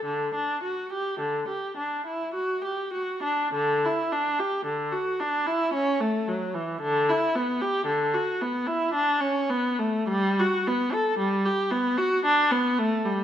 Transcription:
\new Staff \with { instrumentName = "Viola" } { \time 3/4 \key d \major \tempo 4 = 55 d16 d'16 fis'16 g'16 d16 g'16 d'16 e'16 fis'16 g'16 fis'16 d'16 | d16 e'16 d'16 g'16 d16 fis'16 d'16 e'16 cis'16 a16 fis16 e16 | d16 e'16 b16 g'16 d16 fis'16 b16 e'16 d'16 cis'16 b16 a16 | g16 fis'16 b16 a'16 g16 g'16 b16 fis'16 d'16 b16 a16 g16 | }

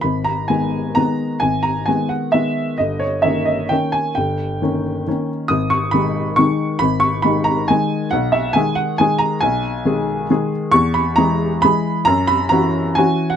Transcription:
<<
  \new Staff \with { instrumentName = "Upright piano" } { \time 3/4 \key gis \minor \tempo 4 = 134 b''8 ais''8 gis''4 ais''4 | gis''8 ais''8 gis''8 fis''8 e''4 | dis''8 cis''8 e''8 dis''8 g''8 gis''8 | g''2~ g''8 r8 |
dis'''8 cis'''8 b''4 cis'''4 | b''8 cis'''8 b''8 ais''8 gis''4 | fis''8 e''8 gis''8 fis''8 gis''8 ais''8 | gis''2~ gis''8 r8 |
\key e \lydian cis'''8 b''8 ais''4 b''4 | ais''8 b''8 ais''4 gis''8. fis''16 | }
  \new Staff \with { instrumentName = "Upright piano" } { \clef bass \time 3/4 \key gis \minor gis,,4 <dis gis b>4 <dis gis b>4 | gis,,4 <dis gis b>4 <dis gis b>4 | g,,4 <dis ais cis'>4 <dis ais cis'>4 | g,,4 <dis ais cis'>4 <dis ais cis'>4 |
gis,,4 <dis gis dis'>4 <dis gis dis'>4 | gis,,4 <dis gis dis'>4 <dis gis dis'>4 | b,,4 <dis gis gis'>4 <dis gis gis'>4 | b,,4 <dis gis gis'>4 <dis gis gis'>4 |
\key e \lydian e,4 <e gis gis'>4 <e gis gis'>4 | fis,4 <e cis' fis'>4 <e cis' fis'>4 | }
>>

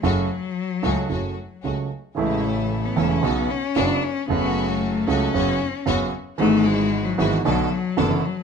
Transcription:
<<
  \new Staff \with { instrumentName = "String section" } { \time 4/4 \key fis \minor \tempo 4 = 114 <a cis' fis'>8 r4 <a cis' fis'>8 <a cis' fis'>8 r8 <a cis' fis'>8 r8 | <a cis' e'>4. <a cis' e'>8 <b cis' fis'>8 r8 <b cis' fis'>8 r8 | <a cis' fis'>4. <a cis' fis'>8 <b cis' fis'>8 r8 <b cis' fis'>8 r8 | <gis e' fis'>4. <gis e' fis'>8 <b d' a'>8 r8 <b d' a'>8 r8 | }
  \new Staff \with { instrumentName = "Cello" } { \time 4/4 \key fis \minor fis2. r4 | gis8 a8. b8 cis'16 b8 cis'8 d'8 cis'8 | b8. a8. cis'2 r8 | a8 gis8. fis8 e16 fis8 fis8 e8 fis8 | }
  \new Staff \with { instrumentName = "Grand piano" } { \clef bass \time 4/4 \key fis \minor <fis, cis fis a fis'>8 r4 <cis, cis fis a fis'>8 <fis, cis fis a fis'>8 r8 <cis, cis fis a fis'>8 r8 | <a,, a, cis e a e'>4. <e,, e, cis e a e'>8 <b,, b, cis fis b fis'>8 r8 <fis,, fis, cis fis b fis'>8 r8 | <fis, cis fis a fis'>4. <cis, cis fis a fis'>8 <fis, cis fis b fis'>8 r8 <fis, cis fis b fis'>8 r8 | <gis,, gis, e gis b fis'>4. <gis,, gis, e gis b fis'>8 <b,, b, d a b fis'>8 r8 <fis,, fis, d a b fis'>8 r8 | }
  \new Staff \with { instrumentName = "Double bass" } { \clef bass \time 4/4 \key fis \minor fis,,8 r4 cis,8 fis,,8 r8 cis,8 r8 | a,,4. e,,8 b,,8 r8 fis,,8 r8 | fis,,4. cis,8 fis,,8 r8 fis,,8 r8 | gis,,4. gis,,8 b,,8 r8 fis,,8 r8 | }
>>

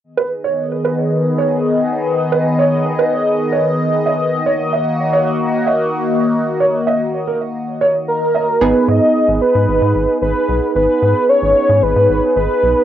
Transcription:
<<
  \new Staff \with { instrumentName = "Grand piano" } { \time 4/4 \key gis \minor \tempo 4 = 112 r16 b'16 r16 cis''8 r16 b'16 r8. cis''16 r4 r16 | r16 b'16 r16 cis''8 r16 b'16 r8. cis''16 r8. dis''16 r16 | r16 cis''16 r16 dis''8 r16 cis''16 r8. dis''16 r4 r16 | r16 cis''16 r16 dis''8 r16 ais'16 r8. cis''16 r8. dis''16 r16 |
r1 | r1 | }
  \new Staff \with { instrumentName = "Analog synth lead" } { \time 4/4 \key gis \minor r1 | r1 | r1 | r2. ais'4 |
b'8 dis''4 b'4. b'4 | b'4 cis''4 b'4 b'4 | }
  \new Staff \with { instrumentName = "Analog polysynth" } { \time 4/4 \key gis \minor r1 | r1 | r1 | r1 |
<b dis' gis'>1~ | <b dis' gis'>1 | }
  \new Staff \with { instrumentName = "Analog synth pad" } { \time 4/4 \key gis \minor << { <dis dis''>1~ | <dis dis''>1~ | <dis dis''>1~ | <dis dis''>1 |
r1 | r1 | } \\ { <b gis'>1~ | <b gis'>1 | <ais fis'>1~ | <ais fis'>1 |
r1 | r1 | } >> }
  \new Staff \with { instrumentName = "Analog synth bass" } { \clef bass \time 4/4 \key gis \minor r1 | r1 | r1 | r1 |
gis,,16 r16 gis,16 r8 gis,,16 r16 gis,16 gis,,16 gis,16 gis,,16 r16 gis,,16 r16 b,,16 r16 | gis,,16 r16 gis,16 r8 gis,,16 r16 gis,16 gis,,16 gis,16 gis,,16 r16 gis,,16 r16 b,,16 r16 | }
>>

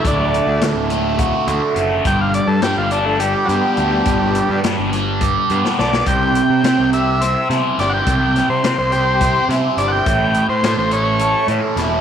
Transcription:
<<
  \new Staff \with { instrumentName = "Transistor combo organ" } { \time 7/8 \key g \major \tempo 4 = 105 d'4 r2 r8 | g''16 f''16 d''16 a'16 g'16 f'16 d'16 a16 g8 <fis g>4~ | <fis g>4 r2 d''8 | g''4. e''4 r8 d''16 <fis'' g''>16~ |
<fis'' g''>8. c''8 c''16 <g' c''>4 r8 d''16 <fis'' g''>16~ | <fis'' g''>8. c''8 c''16 cis''4 r4 | }
  \new Staff \with { instrumentName = "Overdriven electric guitar" } { \time 7/8 \key g \major <d, d a fis'>4 a,8 a8 fis'8 d8 a8 | g,4 g8 d'8 g'8 b8 d'8 | g,4 g8 d'8 g'8 b8 d'8 | c4 c'8 g'8 c''8 e'8 g'8 |
c4 c'8 g'8 c''8 e'8 g'8 | a,4 a8 e'8 a'8 cis'8 e'8 | }
  \new Staff \with { instrumentName = "Picked electric bass" } { \clef bass \time 7/8 \key g \major d,,8. d,16 d,16 d,,4~ d,,16 d,16 r16 fis,,8 | g,,8. g,16 g,16 g,,4~ g,,16 g,16 r16 d,8 | g,,8. g,16 g,16 g,,4~ g,,16 g,16 r16 b,,8 | c,8. c16 c16 c,4~ c,16 c16 r16 g,,8 |
c,8. c16 c16 c,4~ c,16 c16 r16 g,,8 | a,,8. a,16 a,16 a,,4~ a,,16 a,16 r16 e,,8 | }
  \new DrumStaff \with { instrumentName = "Drums" } \drummode { \time 7/8 <hh bd>8 hh8 <hh sn>8 hh8 <hh bd>8 hh8 hh8 | <hh bd>8 hh8 <hh sn>8 hh8 hh8 hh8 hh8 | <hh bd>8 hh8 <hh sn>8 <hh sn>8 <hh bd>8 hh16 sn16 sn16 sn16 | <hh bd>8 hh8 <hh sn>8 hh8 <hh sn>8 <hh sn>8 <hh sn>8 |
<hh bd>8 <hh sn>8 <hh sn>8 hh8 <hh bd sn>8 <hh sn>8 hh8 | <hh bd>8 hh8 <hh sn>8 hh8 hh8 hh8 <hh sn>8 | }
>>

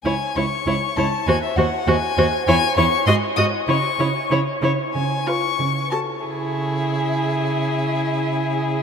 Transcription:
<<
  \new Staff \with { instrumentName = "Violin" } { \time 2/4 \key cis \minor \tempo 4 = 96 gis''8 cis'''4 a''8 | gis''16 e''16 fis''8 gis''4 | gis''8 cis'''8 bis''8 dis'''8 | cis'''4 r4 |
gis''8 cis'''4 a''8 | e''2~ | e''2 | }
  \new Staff \with { instrumentName = "Violin" } { \time 2/4 \key cis \minor cis''8 cis''8 cis''8 cis''8 | bis'8 bis'8 bis'8 bis'8 | cis''8 cis''8 dis''8 dis''8 | cis''8 cis''8 cis''8 cis''8 |
r8 b'8 r8 a'8 | gis'2~ | gis'2 | }
  \new Staff \with { instrumentName = "Viola" } { \time 2/4 \key cis \minor e'8 e'8 e'8 e'8 | fis'8 fis'8 fis'8 fis'8 | e'8 e'8 fis'8 fis'8 | e'8 e'8 e'8 e'8 |
r8 eis'8 r8 fis'8 | e'2~ | e'2 | }
  \new Staff \with { instrumentName = "Cello" } { \clef bass \time 2/4 \key cis \minor cis,8 cis,8 cis,8 cis,8 | dis,8 dis,8 dis,8 dis,8 | e,8 e,8 gis,8 gis,8 | cis8 cis8 cis8 cis8 |
cis4 cis4 | cis2~ | cis2 | }
>>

